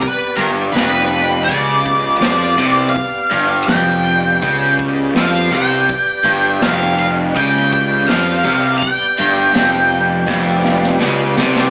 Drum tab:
HH |o---o---o---o---|o---o---o---o---|o---o---o---o---|o---o-----------|
SD |----o-------o---|----o-------o---|----o----o--o---|----o---o-ooo-oo|
BD |o-------o-o-----|o-------o-o-----|o-------o-o-----|o-------o-------|